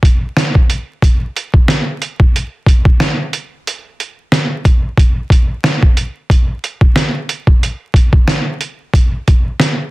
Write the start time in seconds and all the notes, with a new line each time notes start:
0.03 kick, closed hi-hat
0.37 snare, closed hi-hat
0.55 kick
0.70 closed hi-hat
1.02 kick, closed hi-hat
1.37 closed hi-hat
1.54 kick
1.68 snare, closed hi-hat
2.02 closed hi-hat
2.20 kick
2.36 closed hi-hat
2.66 kick, closed hi-hat
2.85 kick
3.00 snare, closed hi-hat
3.33 closed hi-hat
3.67 closed hi-hat
4.00 closed hi-hat
4.32 snare, closed hi-hat
4.65 kick, closed hi-hat
4.98 kick, closed hi-hat
5.30 kick, closed hi-hat
5.64 snare, closed hi-hat
5.82 kick
5.97 closed hi-hat
6.30 kick, closed hi-hat
6.64 closed hi-hat
6.81 kick
6.96 snare, closed hi-hat
7.29 closed hi-hat
7.47 kick
7.63 closed hi-hat
7.94 kick, closed hi-hat
8.13 kick
8.28 snare, closed hi-hat
8.61 closed hi-hat
8.94 kick, closed hi-hat
9.28 kick, closed hi-hat
9.60 snare, closed hi-hat